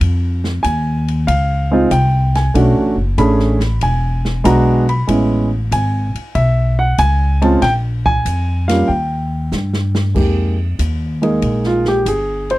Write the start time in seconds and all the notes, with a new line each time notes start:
0.01 F2, kick, ride
0.44 snare
0.63 D#2 G#5, kick, hi-hat pedal, ride
1.08 ride
1.27 C#2 F5, kick, ride
1.71 G#3 C4 D#4 F4
1.91 C2 G5, kick, hi-hat pedal, ride
2.35 G#5, snare, ride
2.54 B1 A3 C#4 D4 F#4, kick, ride
2.75 A1
2.96 F#1
3.18 A1 A3 C#4 D4 G#4 B5, kick, hi-hat pedal, ride
3.39 snare
3.60 snare, ride
3.81 E1 G#5, kick, ride
4.25 snare
4.44 B1 G#3 B3 D4 F#4 A#5, kick, hi-hat pedal, ride
4.89 B5, ride
5.07 A1 G#3 B3 C#4 E4, kick, ride
5.71 G#1 G#5, kick, hi-hat pedal, ride
6.14 muted upright bass stroke, ride
6.35 B1 E5, kick, ride
6.79 F#5
6.98 C#2 G#5, kick, hi-hat pedal, ride
7.42 G#3 C4 C#4 F4 A5, ride
7.62 A#1 G5, kick, snare, ride
8.06 G#5, kick
8.25 F2, kick, hi-hat pedal, ride
8.68 G3 A#3 C#4 F4 F5, snare, ride
8.88 D#2 G5, kick
9.52 G2, snare, hi-hat pedal
9.73 snare
9.95 snare
10.14 F2 G#3 A#3 D#4 G4, kick, crash
10.79 D#2, kick, hi-hat pedal, ride
11.22 G#3 A#3 D#4 G#4, ride
11.42 A#1, kick, ride
11.64 F4, snare
11.85 G4, snare
12.06 G1 G#4, kick, hi-hat pedal, ride
12.50 C5, ride